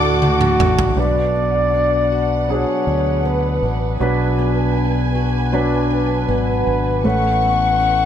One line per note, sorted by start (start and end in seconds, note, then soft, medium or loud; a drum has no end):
0.00 0.56 D2 medium
0.00 0.58 A3 medium
0.00 0.89 A3 medium
0.00 0.21 D4 medium
0.00 0.90 D4 medium
0.00 0.90 F#4 medium
0.00 1.01 F#4 medium
0.00 2.12 F#4 medium
0.00 0.94 A4 medium
0.00 0.90 D5 medium
0.00 0.94 F#5 medium
0.00 0.94 D6 medium
0.22 1.73 D4 medium
0.22 high tom medium
0.41 mid tom medium
0.59 0.95 A1 medium
0.59 1.05 A3 medium
0.59 mid tom medium
0.79 floor tom medium
0.96 2.64 B1 medium
0.96 4.00 B2 medium
0.96 2.41 F#3 soft
0.96 2.41 D4 soft
0.96 8.05 B4 medium
0.96 2.42 B4 medium
0.96 2.50 D5 medium
0.96 3.98 F#5 soft
1.35 3.25 B3 soft
1.74 2.87 D4 soft
2.12 5.14 F#4 soft
2.48 3.93 F#3 medium
2.48 5.52 F#3 soft
2.48 3.93 D4 soft
2.48 3.94 G#4 medium
2.48 3.29 C#5 medium
2.87 3.59 D2 medium
2.87 3.62 D4 soft
3.25 4.38 B3 soft
3.25 3.83 B4 medium
3.62 3.98 A1 medium
3.62 4.76 D4 soft
4.00 6.25 B1 medium
4.00 7.04 B2 medium
4.00 5.45 F#3 medium
4.00 5.45 D4 medium
4.00 5.46 B4 medium
4.00 7.02 G#5 medium
4.39 6.28 B3 soft
4.77 5.89 D4 soft
5.15 7.12 F#4 soft
5.52 6.97 F#3 medium
5.52 7.12 F#3 medium
5.52 6.97 D4 medium
5.52 6.98 B4 medium
5.91 6.66 D4 soft
5.91 7.09 B4 medium
6.28 6.64 G#1 medium
6.28 7.42 B3 soft
6.67 7.02 G#1 medium
6.67 7.13 D4 soft
7.04 8.05 A1 medium
7.04 8.05 A2 medium
7.04 8.05 A3 medium
7.04 8.05 C#4 medium
7.04 8.05 B4 medium
7.04 8.05 E5 medium
7.04 8.05 F#5 loud
7.04 8.05 C#6 medium
7.42 8.05 B3 soft
7.80 8.05 C#4 soft